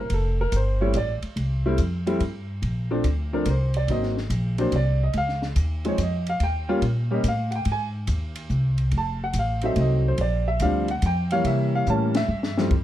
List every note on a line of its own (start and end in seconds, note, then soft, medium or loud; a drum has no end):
0.00 0.10 A#4 medium
0.10 0.51 F1 medium
0.10 kick soft
0.10 ride medium
0.14 0.40 A4 medium
0.41 0.53 A#4 medium
0.52 0.93 G1 medium
0.52 kick soft
0.52 hi-hat pedal medium
0.52 ride medium
0.56 0.82 C5 medium
0.81 0.93 G3 medium
0.81 0.94 A3 medium
0.81 0.94 C4 medium
0.81 0.94 E4 medium
0.81 0.95 C#5 medium
0.94 1.20 A1 medium
0.94 1.13 D5 medium
0.94 kick soft
0.94 hi-hat pedal medium
0.94 ride medium
1.22 muted upright bass stroke soft
1.22 ride soft
1.36 1.77 C2 medium
1.36 kick soft
1.36 ride medium
1.66 1.78 G3 medium
1.66 1.78 A3 medium
1.66 1.78 C4 medium
1.66 1.78 E4 medium
1.78 2.19 F2 medium
1.78 kick soft
1.78 hi-hat pedal medium
1.78 ride medium
2.07 2.19 G3 medium
2.07 2.19 A3 medium
2.07 2.19 C4 medium
2.07 2.20 E4 medium
2.07 ride soft
2.20 2.61 G2 medium
2.20 kick soft
2.20 ride medium
2.62 3.03 A#1 medium
2.62 kick soft
2.62 ride medium
2.91 3.03 F3 medium
2.91 3.03 A3 medium
2.91 3.04 C4 medium
2.91 3.04 D4 medium
3.04 3.45 D2 medium
3.04 kick soft
3.04 hi-hat pedal medium
3.04 ride medium
3.33 3.45 F3 medium
3.33 3.46 A3 medium
3.33 3.46 C4 medium
3.33 3.46 D4 medium
3.33 3.47 A#4 medium
3.45 3.87 C2 medium
3.45 kick soft
3.45 hi-hat pedal medium
3.45 ride medium
3.50 3.76 C5 medium
3.74 3.89 D5 medium
3.74 ride soft
3.88 4.29 G#1 medium
3.88 4.14 F#3 soft
3.88 4.14 A#3 soft
3.88 4.14 C4 soft
3.88 4.15 D#4 medium
3.88 4.17 D#5 medium
3.88 kick soft
3.88 ride medium
4.03 snare soft
4.17 snare soft
4.30 4.71 A#1 medium
4.30 kick soft
4.30 hi-hat pedal medium
4.30 ride medium
4.58 4.71 F#3 medium
4.58 4.71 A#3 medium
4.58 4.71 C4 medium
4.58 4.71 D4 medium
4.58 4.73 C5 medium
4.58 ride soft
4.72 5.13 C2 medium
4.72 5.01 D5 medium
4.72 kick soft
4.72 ride medium
5.03 5.16 D#5 medium
5.13 5.55 C#2 medium
5.13 kick soft
5.13 ride medium
5.18 5.43 F5 medium
5.29 snare soft
5.42 snare soft
5.56 5.97 D#2 medium
5.56 kick soft
5.56 hi-hat pedal medium
5.56 ride medium
5.85 5.97 F3 medium
5.85 5.97 G#3 medium
5.85 5.98 C4 medium
5.85 5.98 D#4 medium
5.85 6.00 C#5 medium
5.85 ride soft
5.98 6.39 F2 medium
5.98 kick soft
5.98 hi-hat pedal medium
5.98 ride medium
6.03 6.28 D#5 medium
6.27 6.42 F5 medium
6.27 ride soft
6.40 6.81 D#2 medium
6.40 6.69 G5 medium
6.40 kick soft
6.40 ride medium
6.69 6.81 G3 medium
6.69 6.81 A#3 medium
6.69 6.81 C#4 medium
6.69 6.81 F4 medium
6.82 7.23 A#2 medium
6.82 kick soft
6.82 ride medium
7.11 7.23 G3 medium
7.11 7.23 A#3 medium
7.11 7.23 C#4 medium
7.11 7.23 G4 medium
7.11 7.26 D#5 medium
7.24 7.65 A2 medium
7.24 kick soft
7.24 hi-hat pedal medium
7.24 ride medium
7.28 7.54 F5 medium
7.51 7.53 F#5 medium
7.51 ride soft
7.55 7.68 G5 medium
7.65 8.07 G#2 medium
7.65 kick soft
7.65 ride medium
7.72 7.87 G#5 medium
8.07 8.49 D#2 medium
8.07 kick soft
8.07 hi-hat pedal medium
8.07 ride medium
8.36 ride medium
8.50 8.91 C2 medium
8.50 kick soft
8.50 hi-hat pedal medium
8.78 ride soft
8.91 9.33 F1 medium
8.91 kick soft
8.91 ride medium
8.98 9.22 A5 medium
9.24 9.36 F#5 medium
9.33 9.75 A1 medium
9.33 kick soft
9.33 hi-hat pedal medium
9.33 ride medium
9.39 9.64 F5 medium
9.61 10.16 F#3 medium
9.61 10.16 A3 medium
9.61 10.16 C4 medium
9.61 10.16 D#4 medium
9.61 9.78 E5 medium
9.61 ride soft
9.76 10.17 C2 medium
9.76 kick soft
9.76 ride medium
9.81 10.06 D#5 medium
10.08 10.20 C5 medium
10.18 10.59 A#1 medium
10.18 10.47 D5 medium
10.18 kick soft
10.18 ride medium
10.48 10.61 E5 medium
10.60 11.01 D2 medium
10.60 10.87 F3 medium
10.60 10.87 G3 medium
10.60 10.87 C4 medium
10.60 10.87 D4 medium
10.60 10.89 F5 medium
10.60 kick soft
10.60 hi-hat pedal medium
10.60 ride medium
10.88 11.03 F#5 medium
10.88 ride soft
11.02 11.43 F2 medium
11.02 11.32 G5 medium
11.02 kick soft
11.02 hi-hat pedal medium
11.02 ride medium
11.31 11.85 E3 medium
11.31 11.85 G3 medium
11.31 11.85 A#3 medium
11.31 11.85 C#5 medium
11.31 11.45 F5 medium
11.31 ride soft
11.44 11.85 C3 medium
11.44 11.73 E5 medium
11.44 kick soft
11.44 ride medium
11.75 11.88 F5 medium
11.86 12.28 A2 medium
11.86 12.13 E3 medium
11.86 12.13 G3 medium
11.86 12.13 A#3 medium
11.86 12.13 C#4 medium
11.86 12.16 A5 medium
11.86 hi-hat pedal medium
12.14 12.62 E5 medium
12.14 snare medium
12.14 ride medium
12.28 12.70 G2 medium
12.43 snare medium
12.58 12.70 F2 medium
12.58 12.70 E3 medium
12.58 12.70 G3 medium
12.58 12.71 A3 medium
12.58 12.71 C4 medium
12.58 snare medium
12.71 12.84 F2 medium
12.71 kick medium
12.71 ride medium